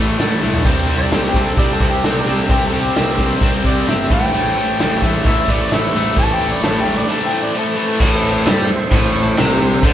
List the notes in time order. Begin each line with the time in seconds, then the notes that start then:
Already playing: A1 A2 E3 A3
0.18 A2 E3 A3, snare, open hi-hat
0.42 B1 A2 E3 A3, snare
0.53 floor tom
0.65 C2 C3 G3 C4 C#4 F4 G#4 C#5, kick, open hi-hat, crash
0.80 C4 E4 G4 C5
0.88 C3 G3 C4
0.98 D5
1.11 C2 C3 G3 C4 A4, snare, open hi-hat
1.28 G4
1.34 C2 C3 G3 C4, kick
1.42 A4
1.57 C2 C3 G3 C4 D5, kick, open hi-hat
1.75 A4
1.80 C2 C3 G3 C4, kick
1.91 G4
2.03 C2 C3 G3 C4 A4, snare, open hi-hat
2.21 D5
2.26 C2 C3 G3 C4
2.37 A4
2.49 C2 C3 G3 C4 G4, kick, open hi-hat
2.67 A4
2.73 C3 G3 C4
2.82 G4
2.95 C2 C3 G3 C4, snare, open hi-hat
3.18 C3 G3 C4, kick
3.41 C2 C3 G3 C4, kick, open hi-hat
3.64 C2 C3 G3 C4 D5, kick
3.87 G1 C3 G3 C4 E5, snare, open hi-hat
4.10 A1 A2 E3 A3 C4 E4 A4 C5 G5, kick
4.33 A1 A2 E3 A3, open hi-hat
4.57 A2 E3 A3
4.79 A1 A2 E3 A3, snare, open hi-hat
5.02 A1 A2 E3 A3 E5, kick
5.25 A1 A2 E3 A3 E5, kick, open hi-hat
5.48 A1 A2 E3 A3 D5, kick
5.71 A1 A2 E3 A3 E5, snare, open hi-hat
5.94 A1 A2 E3 A3
6.17 A1 A2 E3 A3 A5, kick, open hi-hat
6.34 G5
6.41 A2 E3 A3
6.50 D5
6.62 A1 A2 E3 A3 A5, snare, open hi-hat
6.81 G5
6.86 A2 E3 A3
6.96 D5
7.09 A2 E3 A3 A5
7.28 A2 E3 G5
7.32 A3
7.43 D5
7.54 A2 E3 A3
7.59 A4
7.76 A2 E3 A3
8.00 A1 A2 C#4 F4 A#4 C#5, kick, crash
8.15 C4 E4 A4 C5
8.23 ride
8.46 G2 G3, snare, ride
8.68 muted picked electric bass stroke, muted overdriven electric guitar stroke, ride
8.91 A1 A2, kick, ride
9.14 ride
9.37 C2 C3, snare, ride
9.60 ride
9.83 D2 D3, kick, ride